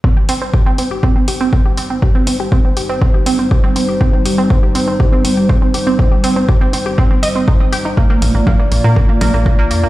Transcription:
<<
  \new Staff \with { instrumentName = "Analog synth pad" } { \time 4/4 \key c \minor \tempo 4 = 121 <g ees' c''>1~ | <g ees' c''>1~ | <g ees' c''>1~ | <g ees' c''>1 |
<bes f' d''>1 | }
  \new Staff \with { instrumentName = "Synth pluck" } { \time 4/4 \key c \minor c'16 g'16 c'16 c'16 g'16 c'16 c'16 g'16 c'16 c'16 g'16 c'16 c'16 g'16 c'16 c'16 | g'16 c'16 c'16 g'16 c'16 c'16 g'16 c'16 c'16 g'16 c'16 c'16 g'16 c'16 c'16 g'16 | c'16 c'16 g'16 c'16 c'16 g'16 c'16 c'16 g'16 c'16 c'16 g'16 c'16 c'16 g'16 c'16 | c'16 g'16 c'16 c'16 g'16 c'16 c'16 g'16 c'16 c'16 ees''16 c'16 ees'16 c'16 g'16 ees'16 |
bes16 bes16 bes16 bes16 bes16 bes16 bes16 bes16 bes16 bes16 bes16 bes16 bes16 bes16 bes16 bes16 | }
  \new Staff \with { instrumentName = "Analog synth bass" } { \clef bass \time 4/4 \key c \minor r1 | r1 | r1 | r1 |
r8 bes,,16 bes,,16 r8 bes,,16 bes,16 r8 bes,,16 bes,,8. f,16 bes,,16 | }
  \new DrumStaff \with { instrumentName = "Drums" } \drummode { \time 4/4 bd8 hho8 bd8 hho8 bd8 hho8 bd8 hho8 | bd8 hho8 bd8 hho8 bd8 hho8 bd8 hho8 | bd8 hho8 bd8 hho8 bd8 hho8 bd8 hho8 | bd8 hho8 bd8 hho8 bd8 hho8 bd8 hho8 |
bd8 hho8 <cgl bd>8 hho8 bd8 <cgl hho>8 bd8 hho8 | }
>>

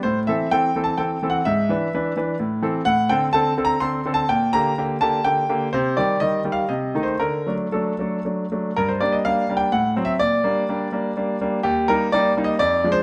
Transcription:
<<
  \new Staff \with { instrumentName = "Grand piano" } { \time 3/4 \key a \dorian \tempo 4 = 126 c''8 e''8 \tuplet 3/2 { g''4 a''8 g''4 fis''8 } | e''2~ e''8 r8 | \key g \minor fis''8 g''8 \tuplet 3/2 { a''4 bes''8 c'''4 a''8 } | g''8 bes''4 a''8 g''4 |
c''8 d''8 \tuplet 3/2 { ees''4 f''8 ees''4 c''8 } | bes'4 a'4 r4 | bes'16 c''16 d''16 ees''16 \tuplet 3/2 { f''4 g''8 fis''4 e''8 } | d''2~ d''8 r8 |
g'8 bes'8 \tuplet 3/2 { d''4 ees''8 d''4 c''8 } | }
  \new Staff \with { instrumentName = "Grand piano" } { \time 3/4 \key a \dorian a,8 <e c' a'>8 <e c' a'>8 <e c' a'>8 <e c' a'>8 <e c' a'>8 | gis,8 <e d' b'>8 <e d' b'>8 <e d' b'>8 a,8 <e c' a'>8 | \key g \minor a,8 <d c' a'>8 <d c' a'>8 <d c' a'>8 <d c' a'>8 <d c' a'>8 | bes,8 <d bes g'>8 <d bes g'>8 <d bes g'>8 <d bes g'>8 <d bes g'>8 |
c8 <ees g g'>8 <ees g g'>8 <ees g g'>8 c8 <ees a ees'>8 | d8 <fis a d'>8 <fis a d'>8 <fis a d'>8 <fis a d'>8 <fis a d'>8 | g,8 <g bes d'>8 <g bes d'>8 <g bes d'>8 a,8 <fis c'>8 | bes,8 <g bes d'>8 <g bes d'>8 <g bes d'>8 <g bes d'>8 <g bes d'>8 |
ees,8 <g bes ees'>8 <g bes ees'>8 <g bes ees'>8 f,8 <f aes d'>8 | }
>>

